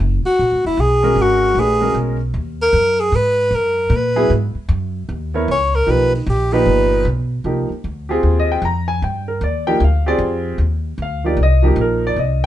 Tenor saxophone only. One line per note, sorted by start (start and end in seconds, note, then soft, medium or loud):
0.26 0.62 F#4 medium
0.67 0.82 E4 medium
0.81 1.24 G#4 loud
1.22 1.61 F#4 medium
1.60 1.97 G#4 medium
2.62 3.02 A#4 medium
3.00 3.17 G#4 medium
3.16 3.57 B4 loud
3.55 3.98 A#4 medium
3.96 4.33 B4 medium
5.51 5.77 C#5 medium
5.75 5.93 A#4 medium
5.91 6.15 B4 medium
6.15 6.31 D#4 soft
6.30 6.55 G4 medium
6.53 7.06 B4 medium